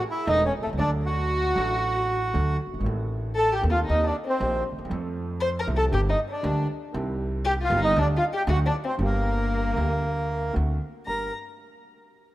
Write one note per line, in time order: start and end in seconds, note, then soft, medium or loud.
0.10 0.26 E4 medium
0.10 0.27 E4 medium
0.10 0.29 E5 loud
0.27 0.49 E1 loud
0.27 0.49 E2 medium
0.27 0.49 E3 medium
0.27 0.49 A3 medium
0.27 0.49 C#4 medium
0.27 0.44 D#4 medium
0.27 0.49 A4 medium
0.27 0.44 D#5 loud
0.45 0.53 C#4 medium
0.45 0.54 C#4 medium
0.45 0.52 C#5 medium
0.59 0.66 B1 medium
0.59 0.70 A3 medium
0.59 0.70 A4 medium
0.66 0.72 C2 medium
0.73 0.78 C#2 medium
0.73 0.79 C#2 medium
0.77 1.52 D2 medium
0.77 1.52 D2 loud
0.77 1.51 D3 medium
0.77 1.51 F#3 medium
0.77 1.51 A3 medium
0.77 0.89 D4 medium
0.77 1.52 D4 medium
0.77 0.91 D4 medium
0.77 1.53 A4 medium
0.77 0.90 D5 loud
1.04 2.56 F#4 loud
1.04 2.57 F#4 medium
1.04 2.57 F#5 medium
1.54 2.30 A1 medium
1.54 2.30 A1 loud
1.54 2.30 A2 loud
1.54 2.29 F#3 medium
1.54 2.30 A3 medium
1.54 2.30 D4 medium
1.58 2.31 A4 medium
2.34 2.56 D2 medium
2.34 2.56 D2 loud
2.34 2.56 D3 medium
2.34 2.56 F#3 medium
2.34 2.56 A3 medium
2.34 2.56 D4 medium
2.34 2.56 A4 medium
2.66 2.73 F#1 soft
2.73 2.79 G1 medium
2.73 2.80 G1 medium
2.79 2.86 G#1 medium
2.79 3.57 D#3 medium
2.83 3.58 A1 medium
2.83 3.59 A1 loud
2.83 3.58 A2 medium
2.83 3.58 A3 medium
2.83 3.58 C4 medium
2.83 3.59 A4 medium
3.35 3.51 A4 medium
3.35 3.54 A4 medium
3.35 3.53 A5 loud
3.52 3.60 G4 medium
3.52 3.63 G4 medium
3.52 3.62 G5 loud
3.61 3.84 D#1 medium
3.61 3.84 D#2 medium
3.61 3.85 D#2 loud
3.61 3.84 D#3 medium
3.61 3.84 A3 medium
3.61 3.84 C4 medium
3.61 3.84 A4 medium
3.70 3.78 F4 medium
3.70 3.80 F4 medium
3.70 3.79 F5 medium
3.86 4.10 D#2 medium
3.86 4.11 D#2 loud
3.86 4.10 D#3 medium
3.86 4.10 A#3 medium
3.86 4.10 C4 medium
3.86 4.03 D#4 medium
3.86 4.10 G4 medium
3.90 4.06 D#4 medium
3.90 4.05 D#5 medium
4.04 4.14 D4 medium
4.04 4.17 D4 medium
4.04 4.16 D5 medium
4.23 4.61 C4 medium
4.29 4.64 C4 medium
4.29 4.64 C5 medium
4.40 4.61 A#1 loud
4.40 4.61 A#2 medium
4.40 4.61 D#3 medium
4.40 4.61 A#3 medium
4.40 4.62 C4 medium
4.40 4.61 G4 medium
4.72 4.78 D2 medium
4.78 4.85 D#2 medium
4.85 4.90 E2 medium
4.85 4.91 E2 medium
4.89 5.63 F2 medium
4.89 5.63 F2 loud
4.89 5.63 F3 medium
4.89 5.63 A3 medium
4.89 5.63 C4 medium
4.89 5.64 A4 medium
5.40 5.48 C5 medium
5.40 5.50 C5 medium
5.40 5.50 C6 loud
5.59 5.67 A#4 medium
5.59 5.68 A#4 medium
5.59 5.67 A#5 loud
5.67 5.88 C2 loud
5.67 5.89 C2 loud
5.67 5.88 C3 medium
5.67 5.88 F3 medium
5.67 5.88 A3 medium
5.67 5.88 C4 medium
5.67 5.88 A4 medium
5.76 5.84 A4 medium
5.76 5.85 A4 medium
5.76 5.85 A5 loud
5.91 6.13 G1 medium
5.91 6.14 G1 loud
5.91 6.13 G2 medium
5.91 6.13 D3 medium
5.91 6.13 G3 medium
5.91 6.13 A#3 medium
5.91 6.13 G4 medium
5.91 6.01 G4 medium
5.91 6.01 G5 loud
6.09 6.19 D#4 medium
6.09 6.20 D#4 medium
6.09 6.20 D#5 medium
6.29 6.66 D4 medium
6.29 6.68 D4 medium
6.29 6.67 D5 medium
6.43 6.65 D2 medium
6.43 6.65 D2 loud
6.43 6.65 D3 loud
6.43 6.65 G3 medium
6.43 6.65 A#3 medium
6.43 6.65 G4 medium
6.92 7.67 C2 loud
6.92 7.67 C2 medium
6.92 7.67 C3 medium
6.92 7.66 D#3 medium
6.92 7.66 G3 medium
6.92 7.67 C4 medium
6.97 7.68 G4 medium
7.45 7.52 G4 loud
7.45 7.54 G4 medium
7.45 7.54 G5 loud
7.62 7.78 F4 medium
7.62 7.79 F4 medium
7.62 7.81 F5 loud
7.69 7.92 G1 loud
7.69 7.92 G2 loud
7.69 7.92 D#3 medium
7.69 7.92 G3 medium
7.69 7.92 C4 medium
7.69 7.92 G4 loud
7.79 7.95 D#4 medium
7.84 7.97 D#4 medium
7.84 7.98 D#5 loud
7.96 8.18 D2 loud
7.96 8.18 D3 loud
7.96 8.18 G3 medium
7.96 8.18 A3 medium
7.96 8.05 D4 medium
7.96 8.18 G4 medium
8.00 8.07 D4 medium
8.00 8.08 D5 loud
8.17 8.24 F4 medium
8.17 8.25 F4 medium
8.17 8.25 F5 loud
8.33 8.40 G4 medium
8.33 8.42 G4 medium
8.37 8.43 G5 loud
8.47 8.69 D2 loud
8.47 8.69 D3 loud
8.47 8.69 F#3 medium
8.47 8.69 A3 medium
8.47 8.69 F#4 medium
8.47 8.56 F#4 medium
8.47 8.58 F#4 medium
8.53 8.60 F#5 loud
8.66 8.73 D4 medium
8.66 8.75 D4 medium
8.70 8.77 D5 medium
8.84 8.91 C4 medium
8.84 8.93 C4 medium
8.89 8.95 C5 medium
8.97 9.72 G1 loud
8.97 9.73 G1 loud
8.97 9.73 G2 medium
8.97 9.72 D3 medium
8.97 9.73 G3 medium
8.97 9.73 A#3 medium
8.97 10.52 A#3 medium
8.97 9.74 G4 medium
9.04 10.53 A#3 medium
9.04 10.55 A#4 medium
9.74 10.51 D2 medium
9.74 10.51 D2 loud
9.74 10.50 D3 medium
9.74 10.50 G3 medium
9.74 10.51 A#3 medium
9.78 10.52 G4 medium
10.53 10.76 D2 medium
10.53 10.78 D2 loud
10.53 10.76 D3 medium
10.53 10.76 A3 medium
10.53 10.76 C4 medium
10.53 10.76 F#4 medium
11.06 11.29 G1 medium
11.06 11.29 G2 medium
11.06 11.29 A#3 soft
11.06 11.29 D4 medium
11.06 11.28 G4 medium
11.06 11.32 A#4 medium
11.06 11.30 A#5 medium